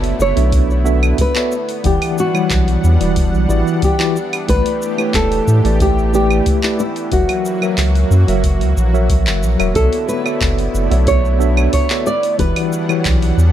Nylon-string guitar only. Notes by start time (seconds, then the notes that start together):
Already playing: A4
0.22 C#5
1.21 B4
1.86 G4
2.20 F#4
3.84 G4
4.49 B4
5.15 A4
5.82 G4
6.15 G4
6.80 E4
7.13 F#4
9.76 A4
10.09 B4
11.08 C#5
11.73 C#5
12.07 D5
12.39 B4